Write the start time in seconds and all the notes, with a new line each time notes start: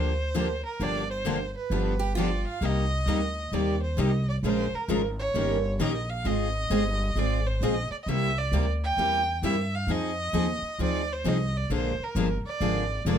Already playing: D2 D3 F3 A#3 D4 G4 C5
0.34 D3 F3 A#3 D4 G4
0.65 A#4
0.80 G1 D3 F3 A#3 D4 G4 D5
1.11 C5
1.25 D3 F3 A#3 D4 G4
1.57 B4
1.70 G1 D3 F3 B3 D4 G4
1.99 G4
2.15 D3 F3 B3 D4 F4 G4
2.19 D5
2.47 F5
2.61 C2 C3 G3 A#3 D#4 G4 D#5
3.06 D2 C3 G3 A#3 D#4 G4
3.52 D#2 C3 G3 A#3 D#4 G4 D5
3.83 C5
3.97 C2 C3 G3 A#3 D#4 G4 D#5
4.29 D5
4.43 A#1 F3 G#3 C#4 F4 A#4 C5
4.72 A#4, muted upright bass stroke
4.88 G#1 F3 G#3 C#4 F4 A#4
5.19 C#5
5.34 G1 D#3 A#3 C#4 G4 A#4
5.79 A#1 D#3 A#3 C#4 G4 A#4 D#5
6.10 F5
6.25 G#1 G#3 C4 F4 G#4 D#5
6.70 G1 G#3 C4 F4 G#4
7.15 G#1 G#3 C4 F4 G#4 D5
7.47 C5
7.61 A#1 G#3 C4 F4 G#4 D#5
7.90 D5, muted upright bass stroke
8.03 C2 D#5
8.08 C3 G3 A#3 E4 G4 E5
8.38 D5
8.52 D2 C3 G3 A#3 E4 G4
8.84 G5
8.97 E2 C3 G3 A#3 E4 G4
9.42 G2 C3 G3 A#3 E4 G4 E5
9.75 F5
9.87 F2 F3 C4 D#4 G#4
9.92 D#5
10.33 D#2 F3 C4 D#4 G#4
10.62 muted upright bass stroke
10.79 D2 F3 C4 D#4 G#4
10.83 D5
11.13 C5
11.24 C2 F3 C4 D#4 G#4 D#5
11.57 D5
11.70 A#1 D3 F3 G#3 A#3 D4 F4 G#4 A#4
11.74 C5
11.98 muted upright bass stroke
12.04 A#4
12.15 G1 D3 F3 G#3 A#3 D4 F4 G#4 A#4
12.43 D5, muted upright bass stroke
12.60 G#1 D3 F3 G#3 A#3 D4 F4 G#4 A#4
13.05 F1 D3 F3 G#3 A#3 D4 F4 G#4 A#4
13.09 D5